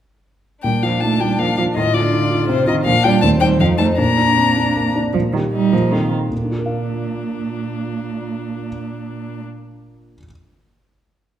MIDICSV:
0, 0, Header, 1, 5, 480
1, 0, Start_track
1, 0, Key_signature, -2, "major"
1, 0, Tempo, 370599
1, 838, Time_signature, 3, 2, 24, 8
1, 5156, Tempo, 390371
1, 14279, End_track
2, 0, Start_track
2, 0, Title_t, "Violin"
2, 0, Program_c, 0, 40
2, 814, Note_on_c, 0, 79, 62
2, 1070, Note_on_c, 0, 77, 48
2, 1089, Note_off_c, 0, 79, 0
2, 1297, Note_on_c, 0, 81, 57
2, 1316, Note_off_c, 0, 77, 0
2, 1555, Note_on_c, 0, 79, 49
2, 1575, Note_off_c, 0, 81, 0
2, 1795, Note_on_c, 0, 77, 58
2, 1815, Note_off_c, 0, 79, 0
2, 2018, Note_off_c, 0, 77, 0
2, 2026, Note_on_c, 0, 77, 51
2, 2124, Note_off_c, 0, 77, 0
2, 2266, Note_on_c, 0, 75, 74
2, 2507, Note_on_c, 0, 74, 65
2, 2526, Note_off_c, 0, 75, 0
2, 3213, Note_off_c, 0, 74, 0
2, 3221, Note_on_c, 0, 72, 62
2, 3451, Note_off_c, 0, 72, 0
2, 3459, Note_on_c, 0, 75, 66
2, 3556, Note_off_c, 0, 75, 0
2, 3694, Note_on_c, 0, 77, 74
2, 3935, Note_on_c, 0, 79, 76
2, 3954, Note_off_c, 0, 77, 0
2, 4162, Note_off_c, 0, 79, 0
2, 4170, Note_on_c, 0, 81, 66
2, 4268, Note_off_c, 0, 81, 0
2, 4404, Note_on_c, 0, 79, 76
2, 4504, Note_off_c, 0, 79, 0
2, 4664, Note_on_c, 0, 77, 57
2, 4762, Note_off_c, 0, 77, 0
2, 4891, Note_on_c, 0, 81, 64
2, 4994, Note_off_c, 0, 81, 0
2, 5152, Note_on_c, 0, 82, 73
2, 6321, Note_off_c, 0, 82, 0
2, 7058, Note_on_c, 0, 63, 42
2, 7538, Note_on_c, 0, 65, 42
2, 7557, Note_off_c, 0, 63, 0
2, 7779, Note_off_c, 0, 65, 0
2, 8021, Note_on_c, 0, 62, 28
2, 11849, Note_off_c, 0, 62, 0
2, 14279, End_track
3, 0, Start_track
3, 0, Title_t, "Grand piano"
3, 0, Program_c, 1, 0
3, 828, Note_on_c, 1, 46, 40
3, 1073, Note_on_c, 1, 65, 32
3, 1083, Control_c, 1, 64, 127
3, 1316, Note_on_c, 1, 63, 30
3, 1461, Note_off_c, 1, 65, 0
3, 1559, Note_off_c, 1, 63, 0
3, 1560, Note_on_c, 1, 65, 29
3, 1793, Note_on_c, 1, 58, 35
3, 1944, Note_off_c, 1, 65, 0
3, 2043, Note_on_c, 1, 65, 37
3, 2179, Note_off_c, 1, 58, 0
3, 2230, Note_off_c, 1, 46, 0
3, 2280, Note_off_c, 1, 65, 0
3, 2282, Note_on_c, 1, 45, 48
3, 2302, Control_c, 1, 64, 0
3, 2509, Control_c, 1, 64, 127
3, 2512, Note_on_c, 1, 65, 40
3, 2756, Note_on_c, 1, 63, 43
3, 2895, Note_off_c, 1, 65, 0
3, 2988, Note_on_c, 1, 65, 35
3, 2993, Note_off_c, 1, 63, 0
3, 3228, Note_on_c, 1, 60, 40
3, 3372, Note_off_c, 1, 65, 0
3, 3463, Note_on_c, 1, 65, 43
3, 3611, Note_off_c, 1, 60, 0
3, 3666, Note_off_c, 1, 45, 0
3, 3703, Note_on_c, 1, 46, 57
3, 3704, Note_off_c, 1, 65, 0
3, 3730, Control_c, 1, 64, 0
3, 3922, Control_c, 1, 64, 127
3, 3944, Note_on_c, 1, 65, 41
3, 3946, Note_on_c, 1, 74, 42
3, 4158, Note_off_c, 1, 65, 0
3, 4159, Note_off_c, 1, 74, 0
3, 4165, Note_off_c, 1, 46, 0
3, 4177, Note_on_c, 1, 39, 55
3, 4205, Control_c, 1, 64, 0
3, 4403, Control_c, 1, 64, 127
3, 4414, Note_on_c, 1, 63, 37
3, 4416, Note_on_c, 1, 72, 36
3, 4634, Note_off_c, 1, 63, 0
3, 4636, Note_off_c, 1, 72, 0
3, 4646, Note_off_c, 1, 39, 0
3, 4653, Note_on_c, 1, 41, 40
3, 4689, Control_c, 1, 64, 0
3, 4881, Control_c, 1, 64, 127
3, 4900, Note_on_c, 1, 63, 37
3, 4906, Note_on_c, 1, 72, 37
3, 5127, Note_off_c, 1, 63, 0
3, 5131, Note_off_c, 1, 72, 0
3, 5136, Note_off_c, 1, 41, 0
3, 5157, Note_on_c, 1, 46, 50
3, 5183, Control_c, 1, 64, 0
3, 5359, Control_c, 1, 64, 127
3, 5395, Note_on_c, 1, 62, 34
3, 5638, Note_on_c, 1, 60, 36
3, 5775, Note_off_c, 1, 62, 0
3, 5871, Note_on_c, 1, 62, 34
3, 5873, Note_off_c, 1, 60, 0
3, 6115, Note_on_c, 1, 58, 30
3, 6251, Note_off_c, 1, 62, 0
3, 6356, Note_on_c, 1, 62, 43
3, 6494, Note_off_c, 1, 58, 0
3, 6542, Note_off_c, 1, 46, 0
3, 6590, Note_off_c, 1, 62, 0
3, 6596, Note_on_c, 1, 46, 43
3, 6608, Control_c, 1, 64, 0
3, 6820, Note_off_c, 1, 46, 0
3, 6833, Note_on_c, 1, 58, 29
3, 6835, Note_on_c, 1, 63, 29
3, 6838, Control_c, 1, 64, 127
3, 6840, Note_on_c, 1, 67, 31
3, 7253, Note_off_c, 1, 58, 0
3, 7254, Note_off_c, 1, 63, 0
3, 7257, Note_off_c, 1, 67, 0
3, 7299, Note_on_c, 1, 46, 39
3, 7319, Control_c, 1, 64, 0
3, 7528, Note_off_c, 1, 46, 0
3, 7535, Note_on_c, 1, 60, 28
3, 7538, Note_on_c, 1, 63, 25
3, 7546, Note_on_c, 1, 69, 28
3, 7548, Control_c, 1, 64, 127
3, 7973, Note_off_c, 1, 60, 0
3, 7974, Note_off_c, 1, 63, 0
3, 7979, Note_off_c, 1, 69, 0
3, 8012, Note_on_c, 1, 46, 27
3, 8046, Control_c, 1, 64, 0
3, 8101, Note_on_c, 1, 58, 22
3, 8186, Note_on_c, 1, 62, 24
3, 8253, Control_c, 1, 64, 127
3, 8271, Note_on_c, 1, 65, 23
3, 8360, Note_on_c, 1, 70, 26
3, 8446, Note_on_c, 1, 77, 25
3, 10938, Control_c, 1, 64, 0
3, 12706, Note_off_c, 1, 46, 0
3, 12750, Note_off_c, 1, 58, 0
3, 12793, Note_off_c, 1, 62, 0
3, 12835, Note_off_c, 1, 65, 0
3, 12879, Note_off_c, 1, 70, 0
3, 12923, Note_off_c, 1, 77, 0
3, 14279, End_track
4, 0, Start_track
4, 0, Title_t, "Violin"
4, 0, Program_c, 2, 40
4, 852, Note_on_c, 2, 62, 33
4, 2278, Note_on_c, 2, 65, 40
4, 2298, Note_off_c, 2, 62, 0
4, 3707, Note_off_c, 2, 65, 0
4, 3720, Note_on_c, 2, 62, 45
4, 4178, Note_on_c, 2, 60, 51
4, 4198, Note_off_c, 2, 62, 0
4, 4666, Note_on_c, 2, 63, 45
4, 4685, Note_off_c, 2, 60, 0
4, 5160, Note_on_c, 2, 62, 44
4, 5179, Note_off_c, 2, 63, 0
4, 6349, Note_off_c, 2, 62, 0
4, 14279, End_track
5, 0, Start_track
5, 0, Title_t, "Cello"
5, 0, Program_c, 3, 42
5, 835, Note_on_c, 3, 55, 53
5, 932, Note_off_c, 3, 55, 0
5, 1085, Note_on_c, 3, 53, 41
5, 1318, Note_off_c, 3, 53, 0
5, 1335, Note_on_c, 3, 57, 57
5, 1563, Note_off_c, 3, 57, 0
5, 1578, Note_on_c, 3, 55, 43
5, 1792, Note_off_c, 3, 55, 0
5, 1800, Note_on_c, 3, 53, 58
5, 1896, Note_off_c, 3, 53, 0
5, 2043, Note_on_c, 3, 53, 54
5, 2138, Note_off_c, 3, 53, 0
5, 2279, Note_on_c, 3, 51, 56
5, 2374, Note_off_c, 3, 51, 0
5, 2517, Note_on_c, 3, 50, 62
5, 3219, Note_on_c, 3, 48, 61
5, 3239, Note_off_c, 3, 50, 0
5, 3470, Note_on_c, 3, 51, 61
5, 3489, Note_off_c, 3, 48, 0
5, 3695, Note_off_c, 3, 51, 0
5, 3703, Note_on_c, 3, 53, 67
5, 3798, Note_off_c, 3, 53, 0
5, 3942, Note_on_c, 3, 55, 70
5, 4164, Note_off_c, 3, 55, 0
5, 4172, Note_on_c, 3, 57, 67
5, 4269, Note_off_c, 3, 57, 0
5, 4411, Note_on_c, 3, 55, 51
5, 4642, Note_off_c, 3, 55, 0
5, 4649, Note_on_c, 3, 53, 67
5, 4879, Note_off_c, 3, 53, 0
5, 4887, Note_on_c, 3, 57, 62
5, 4991, Note_off_c, 3, 57, 0
5, 5149, Note_on_c, 3, 58, 57
5, 6320, Note_off_c, 3, 58, 0
5, 6574, Note_on_c, 3, 53, 62
5, 6671, Note_off_c, 3, 53, 0
5, 6810, Note_on_c, 3, 51, 44
5, 6907, Note_off_c, 3, 51, 0
5, 7049, Note_on_c, 3, 55, 66
5, 7299, Note_on_c, 3, 53, 56
5, 7317, Note_off_c, 3, 55, 0
5, 7533, Note_on_c, 3, 51, 54
5, 7552, Note_off_c, 3, 53, 0
5, 7771, Note_off_c, 3, 51, 0
5, 7778, Note_on_c, 3, 51, 37
5, 7876, Note_off_c, 3, 51, 0
5, 8026, Note_on_c, 3, 46, 33
5, 11852, Note_off_c, 3, 46, 0
5, 14279, End_track
0, 0, End_of_file